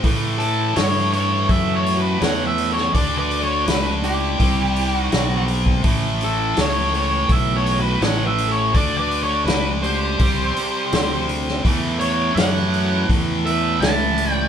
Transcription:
0.03 fingered electric bass A2, distorted electric guitar A2 E3 A3, kick, open hi-hat
0.38 lead electric guitar E4 A4, open hi-hat
0.76 fingered electric bass G2, lead electric guitar A4 C#5, snare, open hi-hat
1.13 lead electric guitar A4 C#5, open hi-hat
1.49 fingered electric bass F#2, lead electric guitar A4 E5, kick, open hi-hat
1.74 lead electric guitar A4 C#5
1.86 open hi-hat
1.97 lead electric guitar F#4 B4
2.20 fingered electric bass E2, lead electric guitar C#5 F#5, snare, open hi-hat
2.47 lead electric guitar B4 E5
2.58 open hi-hat
2.72 lead electric guitar A4 C#5
2.77 snare
2.94 fingered electric bass D2, distorted electric guitar D3 A3 D4, lead electric guitar A4 D5, kick, open hi-hat
3.18 lead electric guitar B4 D5
3.31 open hi-hat
3.41 lead electric guitar A4 C#5
3.66 fingered electric bass C#2, lead electric guitar F#4 B4, snare, open hi-hat
4.03 lead electric guitar E4 G4, open hi-hat
4.39 fingered electric bass C2, distorted electric guitar C3 G3 C4, kick, open hi-hat
4.76 open hi-hat
4.94 lead electric guitar D#4 F#4
5.12 fingered electric bass B1, snare, open hi-hat
5.48 open hi-hat
5.66 kick
5.84 fingered electric bass A1, distorted electric guitar A2 E3 A3, kick, open hi-hat
6.21 lead electric guitar E4 A4, open hi-hat
6.57 fingered electric bass C#2, lead electric guitar A4 C#5, snare, open hi-hat
6.93 lead electric guitar A4 C#5, open hi-hat
7.29 fingered electric bass B1, lead electric guitar A4 E5, kick, open hi-hat
7.55 lead electric guitar A4 C#5
7.66 open hi-hat
7.79 lead electric guitar F#4 B4
8.02 fingered electric bass A1, lead electric guitar C#5 F#5, snare, open hi-hat
8.26 lead electric guitar B4 E5
8.38 open hi-hat
8.48 lead electric guitar A4 C#5
8.73 fingered electric bass D2, distorted electric guitar D3 A3, lead electric guitar A4 D5, kick, open hi-hat
8.77 distorted electric guitar D4
8.98 lead electric guitar B4 D5
9.11 open hi-hat
9.23 lead electric guitar A4 C#5
9.45 fingered electric bass C#2, lead electric guitar F#4 B4, snare, open hi-hat
9.82 lead electric guitar G4 C5, open hi-hat
10.19 fingered electric bass C2, distorted electric guitar C3 G3 C4, kick, open hi-hat
10.56 muted fingered electric bass stroke, open hi-hat
10.92 fingered electric bass D2, snare, open hi-hat
11.29 open hi-hat
11.48 snare
11.63 fingered electric bass E2, distorted electric guitar A2 E3 A3, kick, open hi-hat
11.99 lead electric guitar A4 C#5, open hi-hat
12.35 fingered electric bass F#2, lead electric guitar C#5 F#5, snare, open hi-hat
12.74 open hi-hat
13.09 fingered electric bass E2, kick, open hi-hat
13.45 lead electric guitar B4 E5, open hi-hat
13.80 fingered electric bass C#2, lead electric guitar E5 A5, snare, open hi-hat
14.18 open hi-hat
14.31 lead electric guitar D5 G5

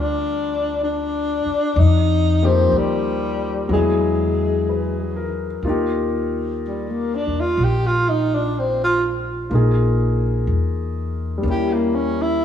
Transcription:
Already playing: upright bass D2, grand piano G3 C4 F4 A#4, tenor saxophone D4
0.83 tenor saxophone D4
1.46 muted upright bass stroke
1.76 upright bass F2, tenor saxophone D#4
2.43 grand piano F3 A#3 D#4 G4, tenor saxophone C4
2.72 upright bass D#2
2.77 tenor saxophone G3
3.69 upright bass E2, grand piano F#3 B3 E4, tenor saxophone G#3
3.73 grand piano G#4
4.69 grand piano B4
5.16 grand piano A#4
5.63 upright bass D#2, grand piano A#3 F4
5.67 grand piano D#4 G4
6.67 tenor saxophone G3
6.90 tenor saxophone A#3
7.15 tenor saxophone D4
7.27 upright bass E2
7.41 tenor saxophone F4
7.57 upright bass A#1
7.64 tenor saxophone G4
7.87 tenor saxophone F4
8.09 tenor saxophone D#4
8.35 tenor saxophone D4
8.59 tenor saxophone C4
8.84 tenor saxophone F4
9.50 upright bass A#1, grand piano A#3 D#4 F4
9.55 grand piano G#4
10.47 upright bass E2
11.38 grand piano G3
11.42 upright bass D#2, grand piano A#3 C#4
11.50 grand piano E4, tenor saxophone G4
11.74 tenor saxophone A#3
11.95 tenor saxophone C#4
12.22 tenor saxophone E4

